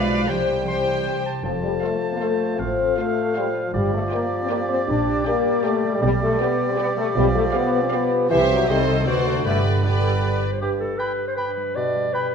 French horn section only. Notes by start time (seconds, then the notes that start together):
Already playing: F4 D5
0.28 G4 C5
0.67 G4 C5
1.44 F3
1.62 G3
1.82 A3
2.12 A#3
2.20 A3
2.59 C4
2.97 A3
3.36 G3
3.65 F3
3.74 G3
3.94 A3
4.13 A#3
4.42 C4
4.49 A#3
4.69 C4
4.88 D4
5.27 A#3
5.64 A3
5.94 G3
6.02 G3
6.21 A3
6.40 B3
6.70 C4
6.79 B3
6.97 A3
7.16 G3
7.35 A3
7.54 B3
7.83 C4
7.92 B3
8.30 E3
8.50 F#3
8.70 G3
8.99 A3
9.08 B3
9.27 A3
9.45 A3
9.78 A3
9.84 G3